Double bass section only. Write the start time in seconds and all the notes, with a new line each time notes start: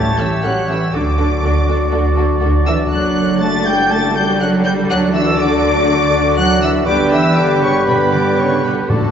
Already playing: A1
0.44 A1
0.93 D2
1.42 D2
1.92 D2
2.42 D2
2.91 F#1
4.89 D2
6.87 G1
8.89 A1